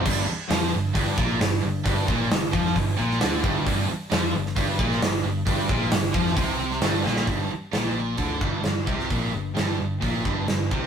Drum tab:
CC |x---------------|----------------|----------------|----------------|
HH |----o---o---o---|o---o---o---o---|o---o---o---o---|o---o---o---o---|
SD |----o-------o---|----o--o---oo---|----o--o---oo---|----o--o---oo-oo|
BD |o-------o-o-----|o-o---o-o-----o-|o-------o-o-----|o-o---o-o-------|

CC |----------------|----------------|
HH |o---o---o---o---|o---o---o---o---|
SD |----o-------o--o|----o-------o---|
BD |o-------o-o---o-|o-------o-o---o-|